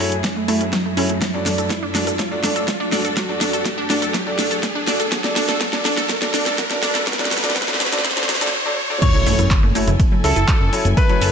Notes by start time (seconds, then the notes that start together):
Already playing: F#2 F#3 A3 E4 G#4, riser
0.00 E4 F#4 A4 C#5
0.12 closed hi-hat
0.24 kick, snare, closed hi-hat
0.36 A3
0.48 A3 E4 F#4 A4 E5, open hi-hat
0.61 C#4, closed hi-hat
0.73 F#3, kick, snare, closed hi-hat
0.97 C#4 E4 F#4 A4 C#5, open hi-hat
1.10 A3, closed hi-hat
1.22 F#3 D4 A4, kick, snare, closed hi-hat, shaker
1.34 D4 F#4 A4 D5
1.46 D4 F#4 A4 D5, snare, open hi-hat, shaker
1.58 A4, closed hi-hat, shaker
1.70 kick, snare, closed hi-hat, shaker
1.83 D4
1.95 D4 F#4 A4 D5, snare, open hi-hat, shaker
2.07 A4, closed hi-hat, shaker
2.19 F#3, kick, snare, closed hi-hat, shaker
2.31 D4 F#4 A4 D5
2.43 D4 F#4 A4 D5, snare, open hi-hat, shaker
2.56 A4, closed hi-hat, shaker
2.68 kick, snare, closed hi-hat, shaker
2.80 D4
2.92 D4 F#4 A4 D5, snare, open hi-hat, shaker
3.05 A4, closed hi-hat, shaker
3.17 F#3, kick, snare, closed hi-hat, shaker
3.29 D4 F#4 A4 D5
3.41 D4 F#4 A4, snare, open hi-hat, shaker
3.53 A4, closed hi-hat, shaker
3.65 kick, snare, closed hi-hat, shaker
3.78 D4
3.90 D4 F#4 A4 D5, snare, open hi-hat, shaker
4.02 A4, closed hi-hat, shaker
4.14 F#3, kick, snare, closed hi-hat, shaker
4.27 D4 F#4 A4 D5
4.39 D4 F#4 A4 D5, snare, open hi-hat, shaker
4.51 A4, closed hi-hat, shaker
4.63 kick, snare, closed hi-hat, shaker
4.75 D4
4.87 D4 F#4 A4 D5, snare, open hi-hat, shaker
5.00 A4, closed hi-hat, shaker
5.12 F#3, kick, snare, closed hi-hat, shaker
5.24 D4 F#4 A4 D5, snare
5.36 D4 F#4 A4 D5, snare, open hi-hat, shaker
5.48 A4, snare, closed hi-hat, shaker
5.60 F#3, kick, snare, closed hi-hat, shaker
5.73 D4 F#4 A4 D5, snare
5.85 D4 F#4 A4 D5, snare, open hi-hat, shaker
5.97 A4, snare, closed hi-hat, shaker
6.09 F#3, kick, snare, closed hi-hat, shaker
6.22 D4 F#4 A4 D5, snare
6.34 D4 F#4 A4 D5, snare, open hi-hat, shaker
6.46 A4, snare, closed hi-hat, shaker
6.58 F#3, kick, snare, closed hi-hat, shaker
6.70 D4 F#4 A4 D5, snare
6.82 D4 F#4 A4 D5, snare, open hi-hat, shaker
6.95 A4, snare, closed hi-hat, shaker
7.07 F#3, kick, snare, closed hi-hat, shaker
7.13 snare
7.19 D4 F#4 A4 D5, snare
7.25 snare
7.31 F#3, snare, open hi-hat, shaker
7.37 snare
7.44 D4 F#4 A4 D5, snare, closed hi-hat, shaker
7.50 snare
7.56 F#3, kick, snare, closed hi-hat, shaker
7.62 snare
7.68 D4 F#4 A4 D5, snare
7.74 snare
7.80 F#3, snare, open hi-hat, shaker
7.86 snare
7.92 D4 F#4 A4 D5, snare, closed hi-hat, shaker
7.98 snare
8.04 F#3, kick, snare, closed hi-hat, shaker
8.11 snare
8.17 D4 F#4 A4 D5, snare
8.23 snare
8.29 F#3, snare, open hi-hat, shaker
8.35 snare
8.41 D4 F#4 A4 D5, snare, closed hi-hat, shaker
8.47 snare
8.66 D4 F#4 A4 D5
8.90 D4 F#4 A4 D5
9.02 E3 F#3 C#4 E4 A4 C#5 G#5, kick, closed hi-hat, crash, ride, impact, shaker
9.14 E4 F#4 A4 C#5, closed hi-hat
9.26 F#1 A3 E4 F#4 A4 C#5, open hi-hat, shaker
9.39 F#2 E4, closed hi-hat, high conga, shaker
9.51 kick, clap, closed hi-hat, ride, shaker
9.63 F#1 A3, high conga
9.75 A3 E4 F#4 A4 C#5, open hi-hat, shaker
9.87 F#1 E4, closed hi-hat, low conga, shaker
10.00 kick, closed hi-hat, ride, high conga, shaker
10.12 F#3
10.24 C#2 C#4 E4 F#4 A4 E5, open hi-hat, shaker
10.36 F#1 E4, closed hi-hat, shaker
10.48 F#3, kick, clap, closed hi-hat, ride, shaker
10.61 F#1
10.73 E4 F#4 A4 C#5, open hi-hat, shaker
10.85 F#1, closed hi-hat, high conga, low conga, shaker
10.97 A3 B4, kick, closed hi-hat, ride, shaker
11.09 F#3 E4 F#4 A4 C#5, closed hi-hat
11.21 F#1 E4 F#4 A4 C#5, open hi-hat, shaker